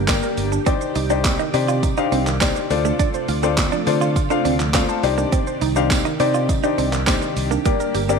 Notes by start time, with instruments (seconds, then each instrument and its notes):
Already playing: fingered electric bass G1, string machine D3 G3 A#3 G4
0.08 grand piano A#3 D4 G4 A#4 D5, synth arpeggio sound D5, kick, snare, clap, closed hi-hat, tambourine, shaker
0.23 synth arpeggio sound A#4, shaker
0.37 fingered electric bass G1, open hi-hat, tambourine, shaker
0.52 synth arpeggio sound D4, shaker
0.66 string machine D#3 D5, clean electric guitar C4, grand piano D4 D#4 G4 C5 D5, synth arpeggio sound D5, kick, closed hi-hat, tambourine, shaker
0.81 synth arpeggio sound C5, shaker
0.95 fingered electric bass C2, synth arpeggio sound D#4, muted clean electric guitar stroke, open hi-hat, tambourine, shaker
1.10 grand piano D4 D#4 G4 C5 D5, clean electric guitar D4, shaker
1.24 synth arpeggio sound C4, kick, snare, clap, closed hi-hat, tambourine, shaker
1.39 synth arpeggio sound D#3, clean electric guitar D#4, shaker
1.54 fingered electric bass C3, grand piano D4 D#4 G4 C5 D5, synth arpeggio sound D5, muted clean electric guitar stroke, open hi-hat, tambourine, shaker
1.68 clean electric guitar F4, shaker
1.83 synth arpeggio sound D#4, muted clean electric guitar stroke, kick, closed hi-hat, tambourine, shaker
1.97 grand piano D4 D#4 G4 C5 F5, synth arpeggio sound D4, clean electric guitar D#4, shaker
2.12 fingered electric bass C2, synth arpeggio sound C4, clean electric guitar D4, open hi-hat, shaker
2.27 synth arpeggio sound D#3, clap, shaker
2.41 clean electric guitar C4, grand piano D4 D#4 G4 C5 D5, synth arpeggio sound D5, kick, snare, clap, closed hi-hat, tambourine, shaker
2.56 synth arpeggio sound C5, muted clean electric guitar stroke, shaker
2.70 fingered electric bass D2, string machine C3 A3 F4 D5, grand piano D4 F4 A4 C5 D5, open hi-hat, tambourine, shaker
2.85 clean electric guitar A3, synth arpeggio sound D4, shaker
2.99 clean electric guitar D4, synth arpeggio sound D5, kick, closed hi-hat, tambourine, shaker
3.14 synth arpeggio sound C5, shaker
3.28 fingered electric bass D2, synth arpeggio sound F4, muted clean electric guitar stroke, open hi-hat, tambourine, shaker
3.43 clean electric guitar C4, grand piano D4 F4 A4 C5 D5, shaker
3.57 synth arpeggio sound C4, kick, snare, clap, closed hi-hat, tambourine, shaker
3.72 synth arpeggio sound F3, clean electric guitar D4, shaker
3.87 fingered electric bass D3, grand piano D4 F4 A4 C5 D5, synth arpeggio sound D5, muted clean electric guitar stroke, open hi-hat, tambourine, shaker
4.01 clean electric guitar F4, shaker
4.16 synth arpeggio sound F4, muted clean electric guitar stroke, kick, closed hi-hat, tambourine, shaker
4.30 clean electric guitar D4, grand piano D4 F4 A4 C5 F5, synth arpeggio sound D4, shaker
4.45 fingered electric bass D2, synth arpeggio sound C4, clean electric guitar D4, open hi-hat, shaker
4.60 synth arpeggio sound F3, clap, shaker
4.74 clean electric guitar C4, grand piano D4 F4 A4 C5 F5, synth arpeggio sound D5, kick, snare, clap, closed hi-hat, tambourine, shaker
4.89 synth arpeggio sound C5, grand piano A5, muted clean electric guitar stroke, shaker
5.03 fingered electric bass C2, string machine D#3 G4, grand piano D4 D#4 G4 C5 D5, open hi-hat, tambourine, shaker
5.18 clean electric guitar A#3, synth arpeggio sound D4, shaker
5.32 clean electric guitar C4, synth arpeggio sound D5, kick, closed hi-hat, tambourine, shaker
5.47 synth arpeggio sound C5, shaker
5.61 fingered electric bass C2, synth arpeggio sound D#4, muted clean electric guitar stroke, open hi-hat, tambourine, shaker
5.76 clean electric guitar D4, grand piano D4 D#4 G4 C5 F5, shaker
5.90 synth arpeggio sound C4, kick, snare, clap, closed hi-hat, tambourine, shaker
6.05 synth arpeggio sound D#3, clean electric guitar D#4, shaker
6.20 fingered electric bass C3, grand piano D4 D#4 G4 C5 D5, synth arpeggio sound D5, muted clean electric guitar stroke, open hi-hat, tambourine, shaker
6.34 clean electric guitar F4, shaker
6.49 synth arpeggio sound D#4, muted clean electric guitar stroke, kick, closed hi-hat, tambourine, shaker
6.63 grand piano D4 D#4 G4 C5 D5, synth arpeggio sound D4, clean electric guitar D#4, shaker
6.78 fingered electric bass C2, synth arpeggio sound C4, clean electric guitar D4, open hi-hat, shaker
6.93 synth arpeggio sound D#3, clap, shaker
7.07 clean electric guitar C4, grand piano D4 D#4 G4 C5 D5, synth arpeggio sound D5, kick, snare, clap, closed hi-hat, tambourine, shaker
7.22 synth arpeggio sound C5, muted clean electric guitar stroke, shaker
7.36 fingered electric bass C2, open hi-hat, tambourine, shaker
7.51 clean electric guitar A#3, synth arpeggio sound D4, shaker
7.65 string machine D3 G3 A#3, grand piano A#3 D4 G4 A#4 D5, clean electric guitar A#3, synth arpeggio sound D5, kick, closed hi-hat, shaker
7.80 synth arpeggio sound A#4, shaker
7.95 fingered electric bass G1, synth arpeggio sound G4, muted clean electric guitar stroke, open hi-hat, tambourine, shaker
8.09 grand piano A#3 D4 G4 A#4 D5, clean electric guitar C4, shaker